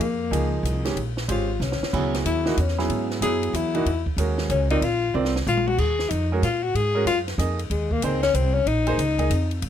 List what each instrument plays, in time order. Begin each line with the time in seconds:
0.00 upright bass F2, tenor saxophone A#3, ride
0.31 upright bass C#2, upright piano F3 A#3 D#4 G#4, hi-hat pedal, ride
0.63 upright bass C2, hi-hat pedal, ride
0.85 upright piano D#3 G#3 C#4 G4, snare, ride
0.96 upright bass A#1, ride
1.17 snare
1.28 upright bass G#1, upright piano G#3 C#4 G4 C5, tenor saxophone F4, hi-hat pedal, ride
1.60 upright bass C2, tenor saxophone C#4, snare, hi-hat pedal
1.72 snare
1.81 muted upright bass stroke, snare
1.93 upright bass C#2, upright piano F#3 B3 E4 G#4, kick, crash
2.14 snare, ride
2.24 upright bass D#2, tenor saxophone E4, hi-hat pedal, ride
2.46 upright piano E3 A#3 D#4 F#4, snare
2.57 upright bass E2, tenor saxophone C#4, hi-hat pedal, ride
2.68 snare
2.78 upright piano F#3 B3 E4 G#4, snare
2.89 upright bass G#2, ride
3.10 snare
3.21 upright bass F#2, upright piano F#3 B3 E4 G#4, tenor saxophone G#4, hi-hat pedal, ride
3.43 ride
3.53 upright bass E2, tenor saxophone E4, hi-hat pedal, ride
3.74 upright piano E3 A#3 D#4 F#4, ride
3.85 upright bass E2, ride
4.06 kick
4.17 upright bass D#2, upright piano G#3 C#4 F#4 A#4, hi-hat pedal, ride
4.38 snare
4.49 upright bass C#2, tenor saxophone C#4, hi-hat pedal, ride
4.70 upright piano C4 F4 A#4 D5, tenor saxophone D#4, ride
4.81 upright bass A#1, tenor saxophone F4, ride
5.14 upright bass C2, upright piano C4 F4 A#4 D5, tenor saxophone C4
5.25 snare
5.36 snare
5.47 upright bass A#1, tenor saxophone F4, hi-hat pedal, mid tom
5.57 mid tom
5.67 tenor saxophone F#4, mid tom
5.78 upright bass D#2, tenor saxophone G#4, kick, crash
5.99 snare
6.10 upright bass F2, tenor saxophone D#4, hi-hat pedal, ride
6.32 upright piano G#3 C#4 F#4 A#4
6.42 upright bass A#2, tenor saxophone F4, hi-hat pedal, ride
6.63 tenor saxophone F#4
6.74 upright bass G#2, tenor saxophone G#4, ride
6.95 upright piano G#3 C#4 F#4 A#4
7.05 upright bass F#2, tenor saxophone F4, hi-hat pedal, ride
7.28 snare, ride
7.38 upright bass F2, upright piano A#3 D#4 G#4 D#5, hi-hat pedal, ride
7.59 ride
7.70 upright bass D#2, tenor saxophone G#3, ride
7.91 tenor saxophone A#3, kick
8.02 upright bass C#2, upright piano A#3 D#4 G#4 C5, tenor saxophone C4, hi-hat pedal, ride
8.23 tenor saxophone C#4, snare, ride
8.34 upright bass C2, tenor saxophone C4, hi-hat pedal, ride
8.54 tenor saxophone C#4
8.66 upright bass A#1, tenor saxophone D#4, ride
8.87 upright piano A#3 D#4 G#4 C5, ride
8.98 upright bass C#2, hi-hat pedal, ride
9.18 upright piano A#3 D#4 G#4 D#5, kick, ride
9.30 upright bass F2, hi-hat pedal, ride
9.51 ride
9.62 upright bass G#2, ride